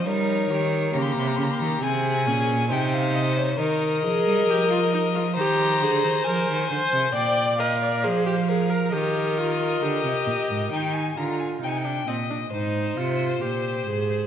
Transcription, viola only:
X:1
M:4/4
L:1/16
Q:1/4=67
K:Ebmix
V:1 name="Viola"
E2 G2 B,4 C2 D2 E4 | E2 A2 G F E F G2 A2 B2 c2 | =d2 B2 A G A B G2 F2 G4 | E2 F2 E =D C D E2 F2 G2 A2 |]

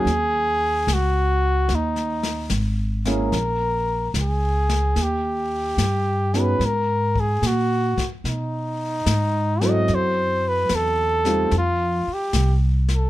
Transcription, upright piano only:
X:1
M:4/4
L:1/8
Q:"Swing" 1/4=73
K:D#phr
V:1 name="Upright piano"
z6 z [G,A,CEG] | z6 z [B,CDFG] | z6 z [F,=CEF=A]- | [F,=CEF=A]2 z [=G,=A,CD^E] z4 |]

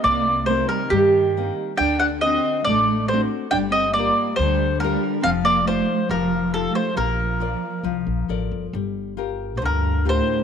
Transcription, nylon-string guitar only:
X:1
M:2/4
L:1/8
Q:1/4=69
K:Bb
V:1 name="Nylon-string guitar"
C, [B,CE] G, [B,CE] | D, [CD^F] A, [CDF] | G, [FGB] D, [FGB] | F, [EFc] F, [EFA] |
B, [FBd] F, [ABd] | [K:Gm] G, [FGB] D, [FGB] |]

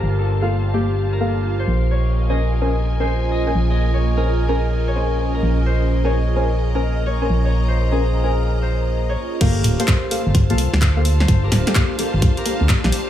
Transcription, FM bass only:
X:1
M:4/4
L:1/16
Q:"Swing 16ths" 1/4=128
K:Gm
V:1 name="FM bass" clef=bass
G,,,12- G,,,2 B,,,2- | B,,,12- B,,,2 B,,,2- | B,,,12- B,,,2 B,,,2- | B,,,12- B,,,2 B,,,2- |
B,,,12- B,,,2 z2 | G,,,2 D,,, z4 G,,,2 C,,2 D,,4- D,, | G,,,2 D,,, z4 G,,, z3 D,, z B,,, z2 |]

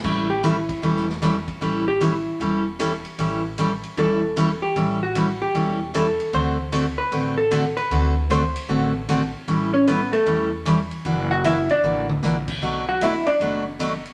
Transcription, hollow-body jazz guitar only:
X:1
M:4/4
L:1/8
Q:"Swing" 1/4=153
K:Amix
V:1 name="Hollow-body jazz guitar"
z G E2 z4 | z G E2 z4 | z4 A3 G- | G F2 G3 A2 |
=c3 B2 A2 B- | B2 =c3 z3 | z [Cc] [B,B] [A,A]2 z3 | z [Ff] [Ee] [Dd]2 z3 |
z [Ff] [Ee] [Dd]2 z3 |]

